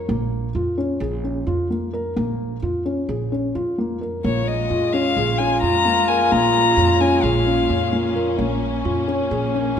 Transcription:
0.08 upright bass A#1, felt piano A#3
0.55 upright bass F2, felt piano F4
0.78 felt piano C#4
1.00 upright bass A#1, felt piano G#4
1.24 felt piano C#4
1.47 upright bass F2, felt piano F4
1.70 felt piano A#3
1.93 felt piano A#4
2.16 upright bass A#1, felt piano A#3
2.62 upright bass F2, felt piano F4
2.86 felt piano C#4
3.09 upright bass A#1, felt piano G#4
3.32 felt piano C#4
3.55 upright bass F2, felt piano F4
3.78 felt piano A#3
4.01 felt piano A#4
4.24 upright bass A#1, string section A#2 G#3 C#4, felt piano A#3, french horn F4, violin C#5
4.47 violin D#5
4.70 upright bass F2, felt piano F4
4.93 felt piano C#4, violin F5
5.17 upright bass A#1, felt piano G#4
5.38 felt piano C#4, violin G#5
5.61 upright bass F2, felt piano F4, violin A#5
5.86 felt piano A#3
6.08 felt piano A#4, violin G#5
6.31 upright bass A#1, felt piano A#3, violin A#5
6.77 upright bass F2, felt piano F4
7.01 felt piano C#4, violin G#5
7.23 upright bass A#1, felt piano G#4, violin F5
7.47 felt piano C#4
7.70 upright bass F2, felt piano F4
7.93 felt piano A#3
8.16 felt piano A#4
8.39 upright bass A#1, felt piano A#3, string section A#3, french horn C#4
8.85 upright bass F2, felt piano F4
9.08 felt piano C#4
9.31 upright bass A#1, felt piano G#4
9.54 felt piano C#4

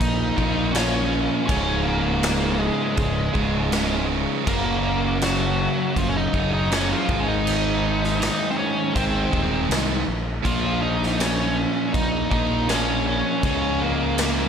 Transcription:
Already playing: distorted electric guitar A#2 F3 A#3, string section C#3 F3 A#3 F4
0.00 fingered electric bass A#1, lead electric guitar D#4 D#5, kick, crash
0.37 fingered electric bass A#1, distorted electric guitar A#2 F3 A#3, kick
0.73 distorted electric guitar A#2 F3, lead electric guitar C#4 C#5, snare, crash
0.77 distorted electric guitar A#3
1.47 fingered electric bass C#1, distorted electric guitar C#2 G#2, string section F3 G#3, lead electric guitar C#4 C#5, kick, crash
1.52 distorted electric guitar C#3
1.83 lead electric guitar A#3 A#4
2.23 snare, crash
2.58 lead electric guitar G#3 G#4
2.96 fingered electric bass C#1, lead electric guitar G#3 G#4, kick, crash
3.34 fingered electric bass C#1, distorted electric guitar C#2 G#2 C#3, kick
3.71 distorted electric guitar C#2 G#2 C#3, snare, crash
4.47 fingered electric bass F#1, distorted electric guitar F#2 C#3 F#3, string section F#3 A#3 F#4, lead electric guitar A#3 A#4, kick, crash
5.21 lead electric guitar F#3 F#4, snare, crash
5.96 fingered electric bass F#1, lead electric guitar F3 F4, kick, crash
6.09 lead electric guitar C#4
6.17 lead electric guitar D#4 D#5
6.33 fingered electric bass F#1, distorted electric guitar F#2 C#3 F#3, kick
6.53 lead electric guitar D#4 D#5
6.71 distorted electric guitar F#2 C#3 F#3, lead electric guitar C#4 C#5, snare, crash
6.92 lead electric guitar F3 F4
7.09 fingered electric bass G#1, distorted electric guitar G#2 D#3 G#3, string section D#3 G#3 D#4, kick
7.20 lead electric guitar C#4
7.28 lead electric guitar D#4 D#5
7.47 crash
8.04 snare
8.21 lead electric guitar D#4 D#5, snare, crash
8.51 lead electric guitar C4
8.58 lead electric guitar C#4 C#5
8.95 fingered electric bass G#1, distorted electric guitar G#2 D#3 G#3, lead electric guitar C4 C5, kick, crash
9.32 fingered electric bass D#1, distorted electric guitar G#2 D#3 G#3, kick
9.69 fingered electric bass C2, snare, crash
10.08 fingered electric bass A#1
10.44 fingered electric bass A#1, distorted electric guitar A#2 F3 A#3, string section C#3 F3 A#3 F4, lead electric guitar F3 F4, kick, crash
10.82 lead electric guitar D#4 D#5
11.03 snare
11.20 lead electric guitar C#4 C#5, snare, crash
11.94 fingered electric bass A#1, lead electric guitar D#4 D#5, kick, crash
12.31 fingered electric bass A#1, distorted electric guitar A#2 F3 A#3, lead electric guitar D#4 D#5, kick
12.69 distorted electric guitar A#2 F3 A#3, lead electric guitar C#4 C#5, snare, crash
13.07 lead electric guitar C#4 C#5
13.42 fingered electric bass C#2, distorted electric guitar C#2 G#2, string section G#3, lead electric guitar C#4 C#5, kick, crash
13.46 distorted electric guitar C#3
13.82 lead electric guitar A#3 A#4
14.18 snare, crash

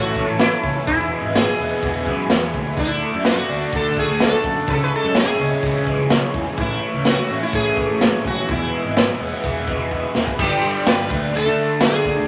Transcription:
Already playing: picked electric bass A1, distorted electric guitar A2 E3 A3 C#4 E4, sitar F#4, string machine A4 C#5 E5 A5
0.16 distorted electric guitar A3, kick
0.26 picked electric bass A1
0.39 distorted electric guitar C#4, sitar E4, snare, open hi-hat, tambourine
0.63 picked electric bass C#2, distorted electric guitar E3, kick
0.86 picked electric bass E1, distorted electric guitar E2, sitar E4, string machine G#4 B4 G#5, kick, open hi-hat
1.11 distorted electric guitar G#3
1.21 picked electric bass G#1
1.35 distorted electric guitar E4, sitar G#4, snare, open hi-hat, tambourine
1.58 picked electric bass E1, distorted electric guitar B3
1.83 picked electric bass E1, distorted electric guitar E3, kick, open hi-hat
2.06 picked electric bass F#2, distorted electric guitar G#3, kick
2.30 picked electric bass E2, distorted electric guitar B3, snare, open hi-hat, tambourine
2.54 picked electric bass D2, distorted electric guitar E3, kick
2.76 picked electric bass D2, distorted electric guitar D3, sitar E4, string machine A4 D5 F#5 A5, kick, open hi-hat
3.02 distorted electric guitar A3
3.14 picked electric bass F#2
3.25 distorted electric guitar F#4, sitar F#4, snare, open hi-hat, tambourine
3.49 picked electric bass D2, distorted electric guitar D4
3.72 picked electric bass D2, distorted electric guitar D3, sitar A4, kick, open hi-hat
3.97 distorted electric guitar A3, sitar G#4, kick
4.09 picked electric bass D2
4.20 distorted electric guitar D4, sitar A4, snare, open hi-hat, tambourine
4.44 picked electric bass F#2, distorted electric guitar D3, kick
4.67 picked electric bass C#2, distorted electric guitar C#3, string machine G#4 C#5 E5 G#5, sitar B4, kick, open hi-hat
4.73 sitar A4
4.84 sitar B4
4.93 distorted electric guitar G#3, sitar A4
5.04 picked electric bass F#2
5.15 distorted electric guitar E4, sitar G#4, snare, open hi-hat, tambourine
5.39 picked electric bass C#2, distorted electric guitar C#4
5.63 picked electric bass C#2, distorted electric guitar E3, kick, open hi-hat
5.87 distorted electric guitar G#3, kick
5.98 picked electric bass C#2
6.10 distorted electric guitar C#4, snare, open hi-hat, tambourine
6.34 picked electric bass E2, distorted electric guitar E3, kick
6.57 picked electric bass A1, distorted electric guitar A2, string machine A3 C#5, sitar E4, kick, open hi-hat
6.83 distorted electric guitar A3
6.94 picked electric bass C#2
7.05 distorted electric guitar E4, sitar F#4, snare, open hi-hat, tambourine
7.28 picked electric bass A1, distorted electric guitar C#4
7.43 sitar E4
7.52 picked electric bass A1, distorted electric guitar E3, sitar G#4, kick, open hi-hat
7.75 distorted electric guitar A3, kick
7.89 picked electric bass A1
7.99 distorted electric guitar C#4, snare, open hi-hat, tambourine
8.24 picked electric bass B1, distorted electric guitar E3, sitar F#4, kick
8.47 picked electric bass E1, distorted electric guitar E2, kick, open hi-hat
8.51 sitar E4, string machine G#4 B4 G#5
8.73 distorted electric guitar G#3
8.84 picked electric bass G#1
8.97 distorted electric guitar E4, snare, open hi-hat, tambourine
9.20 picked electric bass E1, distorted electric guitar B3
9.44 picked electric bass E1, distorted electric guitar E3, kick, open hi-hat
9.68 distorted electric guitar G#3, kick
9.79 picked electric bass E1
9.91 distorted electric guitar B3, kick, tambourine
10.14 picked electric bass E1, distorted electric guitar E3, snare
10.27 kick
10.39 picked electric bass G1, distorted electric guitar G2 D3, sitar G4, string machine B4 D5 G5 B5, kick, crash
10.43 distorted electric guitar G3
10.62 picked electric bass G2, distorted electric guitar D3 G3, open hi-hat
10.77 tambourine
10.86 picked electric bass G2, distorted electric guitar G2 D3 G3, sitar B4, snare, open hi-hat, tambourine
10.97 picked electric bass G1
11.09 picked electric bass D2, distorted electric guitar D3 A3 D4, string machine D5 E5 D6, kick, open hi-hat
11.34 distorted electric guitar D3 A3 D4, sitar A4, open hi-hat
11.46 picked electric bass D3, tambourine
11.58 open hi-hat, tambourine
11.70 tambourine
11.81 distorted electric guitar D3 A3 D4, snare, open hi-hat, tambourine
11.85 sitar G#4
12.05 distorted electric guitar A3 D4, kick, open hi-hat, tambourine
12.17 picked electric bass D2

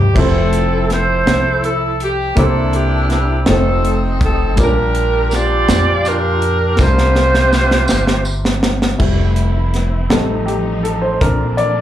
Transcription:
Already playing: upright bass D2, upright piano A#3 C4 E4 G4 C5, saxophone section G4
0.14 upright bass F1, upright piano F3 A3 C4 E4, saxophone section C4 E4 A4, kick, crash
0.18 upright piano C5
0.53 closed hi-hat
0.90 saxophone section E4 A4 C5, snare, closed hi-hat
1.26 upright bass C2, snare, closed hi-hat
1.64 saxophone section A4, closed hi-hat
2.00 saxophone section G4, closed hi-hat
2.35 upright bass C2, upright piano C3 A#3 D4 E4 A4 C5, saxophone section D4 E4 A4, kick, closed hi-hat
2.73 saxophone section G4, closed hi-hat
3.10 saxophone section G4, snare, closed hi-hat
3.46 upright bass F1, upright piano A3 C4 D#4 F4 C5, snare, closed hi-hat
3.50 saxophone section C4 D#4 A4
3.85 closed hi-hat
4.21 kick, closed hi-hat
4.25 saxophone section A4
4.56 upright bass A#1, upright piano A#2 G3 A#3 C#4 F4, kick, closed hi-hat, tambourine
4.60 saxophone section D4 G4 A#4, upright piano D4 A#4
4.95 closed hi-hat
5.31 saxophone section F4 G4 D5, snare, closed hi-hat, tambourine
5.68 upright bass F2, snare, closed hi-hat, tambourine
6.05 saxophone section D4 G4 A#4, closed hi-hat, tambourine
6.42 closed hi-hat
6.77 upright bass C2, upright piano C3 G3 C4 D4 F4, saxophone section G4, kick, snare, tambourine
6.81 saxophone section F4 C5, upright piano A#4
6.98 snare
7.15 snare
7.34 snare
7.53 snare, tambourine
7.71 snare
7.88 upright bass G1, snare, tambourine
8.07 snare
8.25 tambourine
8.45 snare
8.63 snare
8.82 snare
8.98 upright bass F1, string section E3 F3 C4 E4, upright piano G3 A3 E4, kick, crash
9.36 closed hi-hat
9.74 snare, closed hi-hat
10.09 upright bass A1, upright piano G3 A3 D#4 A4, snare, closed hi-hat
10.14 string section D#4
10.46 upright piano G4, closed hi-hat
10.83 upright piano A4, closed hi-hat
11.02 upright piano C5
11.21 upright bass A#1, string section A#3 D4, upright piano C4 D4 A4 A#4, kick, closed hi-hat
11.57 upright piano D5, closed hi-hat

